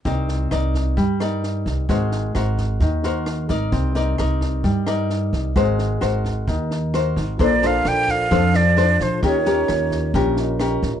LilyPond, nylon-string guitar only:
\new Staff \with { instrumentName = "Nylon-string guitar" } { \time 4/4 \key c \dorian \tempo 4 = 131 << { <ees' bes' d''>4 <ees' bes' d''>4 r8 <ees' bes' d''>4. | <ges' bes' c''>4 <ges' bes' c''>4. <ges' bes' c''>4 <ees' bes' d''>8~ | <ees' bes' d''>8 <ees' bes' d''>8 <ees' bes' d''>4. <ees' bes' d''>4. | <ges' bes' c''>4 <ges' bes' c''>4. r8 <ges' bes' c''>4 |
<d' a' c''>8 <d' a' c''>4. <d' a' c''>8 r8 <d' a' c''>4 | <des' g' bes'>8 <des' g' bes'>4. <des' g' bes'>4 <des' g' bes'>8 r8 | } \\ { c'2 g2 | aes2 ees2 | c'2 g2 | aes2 ees2 |
bes2 f2 | ees2 bes,2 | } >> }